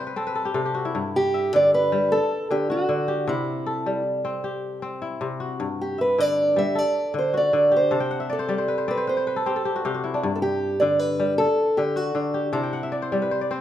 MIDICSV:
0, 0, Header, 1, 3, 480
1, 0, Start_track
1, 0, Tempo, 386598
1, 1183, Time_signature, 12, 3, 24, 8
1, 16897, End_track
2, 0, Start_track
2, 0, Title_t, "Steel-string acoustic guitar"
2, 0, Program_c, 0, 25
2, 1442, Note_on_c, 0, 67, 93
2, 1929, Note_off_c, 0, 67, 0
2, 1934, Note_on_c, 0, 74, 95
2, 2160, Note_off_c, 0, 74, 0
2, 2165, Note_on_c, 0, 71, 95
2, 2630, Note_on_c, 0, 69, 99
2, 2652, Note_off_c, 0, 71, 0
2, 3116, Note_off_c, 0, 69, 0
2, 3121, Note_on_c, 0, 67, 82
2, 3364, Note_off_c, 0, 67, 0
2, 3370, Note_on_c, 0, 66, 84
2, 4084, Note_on_c, 0, 64, 79
2, 4103, Note_off_c, 0, 66, 0
2, 4991, Note_off_c, 0, 64, 0
2, 7219, Note_on_c, 0, 67, 72
2, 7431, Note_off_c, 0, 67, 0
2, 7462, Note_on_c, 0, 71, 81
2, 7703, Note_off_c, 0, 71, 0
2, 7703, Note_on_c, 0, 74, 89
2, 8171, Note_off_c, 0, 74, 0
2, 8176, Note_on_c, 0, 76, 98
2, 8424, Note_off_c, 0, 76, 0
2, 8424, Note_on_c, 0, 74, 96
2, 8903, Note_off_c, 0, 74, 0
2, 8922, Note_on_c, 0, 72, 77
2, 9144, Note_off_c, 0, 72, 0
2, 9156, Note_on_c, 0, 74, 88
2, 9628, Note_off_c, 0, 74, 0
2, 9640, Note_on_c, 0, 72, 67
2, 10338, Note_on_c, 0, 69, 68
2, 10356, Note_off_c, 0, 72, 0
2, 11058, Note_on_c, 0, 71, 84
2, 11065, Note_off_c, 0, 69, 0
2, 11285, Note_off_c, 0, 71, 0
2, 11289, Note_on_c, 0, 72, 82
2, 12188, Note_off_c, 0, 72, 0
2, 12857, Note_on_c, 0, 69, 62
2, 12933, Note_off_c, 0, 69, 0
2, 12938, Note_on_c, 0, 67, 87
2, 13406, Note_on_c, 0, 74, 93
2, 13435, Note_off_c, 0, 67, 0
2, 13650, Note_off_c, 0, 74, 0
2, 13650, Note_on_c, 0, 71, 97
2, 14124, Note_off_c, 0, 71, 0
2, 14129, Note_on_c, 0, 69, 98
2, 14616, Note_on_c, 0, 67, 73
2, 14629, Note_off_c, 0, 69, 0
2, 14858, Note_off_c, 0, 67, 0
2, 14858, Note_on_c, 0, 66, 80
2, 15554, Note_off_c, 0, 66, 0
2, 15559, Note_on_c, 0, 64, 79
2, 16476, Note_off_c, 0, 64, 0
2, 16897, End_track
3, 0, Start_track
3, 0, Title_t, "Kora"
3, 0, Program_c, 1, 46
3, 0, Note_on_c, 1, 48, 66
3, 0, Note_on_c, 1, 55, 75
3, 0, Note_on_c, 1, 60, 67
3, 0, Note_on_c, 1, 72, 64
3, 0, Note_on_c, 1, 74, 62
3, 0, Note_on_c, 1, 76, 60
3, 0, Note_on_c, 1, 78, 65
3, 83, Note_on_c, 1, 71, 62
3, 158, Note_off_c, 1, 60, 0
3, 202, Note_on_c, 1, 60, 64
3, 207, Note_on_c, 1, 69, 58
3, 314, Note_off_c, 1, 78, 0
3, 327, Note_off_c, 1, 71, 0
3, 332, Note_on_c, 1, 71, 68
3, 406, Note_off_c, 1, 72, 0
3, 435, Note_off_c, 1, 69, 0
3, 440, Note_on_c, 1, 69, 63
3, 562, Note_on_c, 1, 67, 64
3, 660, Note_off_c, 1, 48, 0
3, 673, Note_off_c, 1, 69, 0
3, 674, Note_on_c, 1, 48, 72
3, 678, Note_on_c, 1, 69, 64
3, 748, Note_off_c, 1, 71, 0
3, 768, Note_off_c, 1, 76, 0
3, 808, Note_off_c, 1, 67, 0
3, 813, Note_on_c, 1, 67, 59
3, 926, Note_on_c, 1, 66, 66
3, 984, Note_off_c, 1, 74, 0
3, 1056, Note_on_c, 1, 64, 63
3, 1177, Note_on_c, 1, 43, 70
3, 1246, Note_off_c, 1, 48, 0
3, 1246, Note_off_c, 1, 55, 0
3, 1251, Note_off_c, 1, 66, 0
3, 1664, Note_on_c, 1, 76, 62
3, 1908, Note_on_c, 1, 50, 72
3, 2314, Note_off_c, 1, 69, 0
3, 2386, Note_on_c, 1, 55, 70
3, 2437, Note_off_c, 1, 60, 0
3, 2566, Note_off_c, 1, 67, 0
3, 2632, Note_on_c, 1, 69, 67
3, 2691, Note_off_c, 1, 43, 0
3, 2691, Note_off_c, 1, 50, 0
3, 2691, Note_off_c, 1, 55, 0
3, 2948, Note_off_c, 1, 76, 0
3, 3002, Note_off_c, 1, 64, 0
3, 3111, Note_on_c, 1, 50, 70
3, 3349, Note_on_c, 1, 66, 67
3, 3570, Note_off_c, 1, 50, 0
3, 3585, Note_on_c, 1, 50, 72
3, 3823, Note_on_c, 1, 67, 65
3, 4066, Note_on_c, 1, 48, 73
3, 4135, Note_off_c, 1, 50, 0
3, 4268, Note_off_c, 1, 69, 0
3, 4550, Note_on_c, 1, 69, 61
3, 4797, Note_on_c, 1, 55, 65
3, 4871, Note_off_c, 1, 66, 0
3, 5272, Note_on_c, 1, 60, 66
3, 5506, Note_off_c, 1, 67, 0
3, 5511, Note_on_c, 1, 67, 57
3, 5983, Note_off_c, 1, 60, 0
3, 5987, Note_on_c, 1, 60, 68
3, 6186, Note_off_c, 1, 69, 0
3, 6229, Note_on_c, 1, 64, 62
3, 6451, Note_off_c, 1, 48, 0
3, 6466, Note_on_c, 1, 48, 68
3, 6705, Note_on_c, 1, 66, 58
3, 6780, Note_off_c, 1, 67, 0
3, 6950, Note_on_c, 1, 43, 72
3, 7018, Note_off_c, 1, 48, 0
3, 7018, Note_off_c, 1, 55, 0
3, 7427, Note_on_c, 1, 76, 57
3, 7679, Note_on_c, 1, 50, 71
3, 8149, Note_on_c, 1, 55, 70
3, 8175, Note_off_c, 1, 64, 0
3, 8222, Note_off_c, 1, 60, 0
3, 8224, Note_off_c, 1, 66, 0
3, 8384, Note_on_c, 1, 69, 55
3, 8457, Note_off_c, 1, 43, 0
3, 8457, Note_off_c, 1, 50, 0
3, 8457, Note_off_c, 1, 55, 0
3, 8711, Note_off_c, 1, 76, 0
3, 8864, Note_on_c, 1, 50, 62
3, 9110, Note_on_c, 1, 66, 67
3, 9337, Note_off_c, 1, 50, 0
3, 9351, Note_on_c, 1, 50, 80
3, 9579, Note_on_c, 1, 67, 62
3, 9820, Note_on_c, 1, 48, 75
3, 9824, Note_on_c, 1, 81, 69
3, 9895, Note_off_c, 1, 50, 0
3, 9935, Note_on_c, 1, 79, 58
3, 10010, Note_off_c, 1, 66, 0
3, 10020, Note_off_c, 1, 69, 0
3, 10067, Note_on_c, 1, 78, 68
3, 10141, Note_off_c, 1, 67, 0
3, 10180, Note_on_c, 1, 76, 59
3, 10299, Note_on_c, 1, 74, 69
3, 10417, Note_on_c, 1, 72, 65
3, 10536, Note_off_c, 1, 74, 0
3, 10536, Note_on_c, 1, 55, 69
3, 10541, Note_on_c, 1, 74, 61
3, 10610, Note_off_c, 1, 78, 0
3, 10650, Note_off_c, 1, 72, 0
3, 10655, Note_on_c, 1, 72, 62
3, 10780, Note_on_c, 1, 71, 61
3, 10894, Note_off_c, 1, 72, 0
3, 10899, Note_on_c, 1, 72, 58
3, 10904, Note_off_c, 1, 81, 0
3, 11020, Note_off_c, 1, 74, 0
3, 11024, Note_on_c, 1, 60, 70
3, 11024, Note_on_c, 1, 74, 59
3, 11092, Note_off_c, 1, 79, 0
3, 11099, Note_off_c, 1, 71, 0
3, 11138, Note_off_c, 1, 72, 0
3, 11143, Note_on_c, 1, 72, 58
3, 11264, Note_on_c, 1, 71, 58
3, 11378, Note_off_c, 1, 72, 0
3, 11383, Note_on_c, 1, 72, 60
3, 11463, Note_off_c, 1, 76, 0
3, 11504, Note_off_c, 1, 71, 0
3, 11509, Note_on_c, 1, 71, 67
3, 11584, Note_off_c, 1, 60, 0
3, 11625, Note_on_c, 1, 69, 68
3, 11748, Note_on_c, 1, 60, 71
3, 11752, Note_on_c, 1, 67, 53
3, 11822, Note_off_c, 1, 71, 0
3, 11864, Note_off_c, 1, 69, 0
3, 11869, Note_on_c, 1, 69, 64
3, 11979, Note_off_c, 1, 67, 0
3, 11984, Note_on_c, 1, 67, 63
3, 12115, Note_on_c, 1, 66, 64
3, 12214, Note_off_c, 1, 48, 0
3, 12228, Note_on_c, 1, 48, 73
3, 12229, Note_off_c, 1, 67, 0
3, 12234, Note_on_c, 1, 67, 67
3, 12342, Note_off_c, 1, 66, 0
3, 12347, Note_on_c, 1, 66, 62
3, 12400, Note_off_c, 1, 74, 0
3, 12462, Note_on_c, 1, 64, 62
3, 12591, Note_on_c, 1, 62, 62
3, 12706, Note_on_c, 1, 43, 74
3, 12768, Note_off_c, 1, 48, 0
3, 12768, Note_off_c, 1, 55, 0
3, 12781, Note_off_c, 1, 66, 0
3, 12857, Note_off_c, 1, 72, 0
3, 13426, Note_on_c, 1, 50, 80
3, 13505, Note_off_c, 1, 69, 0
3, 13901, Note_on_c, 1, 55, 71
3, 13983, Note_off_c, 1, 60, 0
3, 13987, Note_off_c, 1, 67, 0
3, 14148, Note_on_c, 1, 69, 53
3, 14205, Note_off_c, 1, 43, 0
3, 14205, Note_off_c, 1, 50, 0
3, 14205, Note_off_c, 1, 55, 0
3, 14408, Note_off_c, 1, 64, 0
3, 14625, Note_on_c, 1, 50, 67
3, 14676, Note_off_c, 1, 62, 0
3, 14849, Note_on_c, 1, 66, 61
3, 15068, Note_off_c, 1, 50, 0
3, 15083, Note_on_c, 1, 50, 71
3, 15322, Note_on_c, 1, 67, 58
3, 15553, Note_on_c, 1, 48, 80
3, 15557, Note_on_c, 1, 81, 58
3, 15641, Note_off_c, 1, 50, 0
3, 15685, Note_on_c, 1, 79, 58
3, 15759, Note_off_c, 1, 66, 0
3, 15784, Note_off_c, 1, 69, 0
3, 15805, Note_on_c, 1, 78, 64
3, 15879, Note_off_c, 1, 67, 0
3, 15930, Note_on_c, 1, 76, 63
3, 16039, Note_on_c, 1, 74, 70
3, 16168, Note_on_c, 1, 72, 66
3, 16284, Note_off_c, 1, 74, 0
3, 16289, Note_on_c, 1, 74, 64
3, 16291, Note_on_c, 1, 55, 67
3, 16366, Note_off_c, 1, 78, 0
3, 16413, Note_on_c, 1, 71, 57
3, 16487, Note_off_c, 1, 72, 0
3, 16529, Note_on_c, 1, 72, 63
3, 16636, Note_off_c, 1, 81, 0
3, 16648, Note_off_c, 1, 74, 0
3, 16653, Note_on_c, 1, 74, 59
3, 16769, Note_off_c, 1, 72, 0
3, 16769, Note_on_c, 1, 60, 66
3, 16774, Note_on_c, 1, 72, 63
3, 16842, Note_off_c, 1, 79, 0
3, 16844, Note_off_c, 1, 71, 0
3, 16897, Note_off_c, 1, 48, 0
3, 16897, Note_off_c, 1, 55, 0
3, 16897, Note_off_c, 1, 60, 0
3, 16897, Note_off_c, 1, 72, 0
3, 16897, Note_off_c, 1, 74, 0
3, 16897, Note_off_c, 1, 76, 0
3, 16897, End_track
0, 0, End_of_file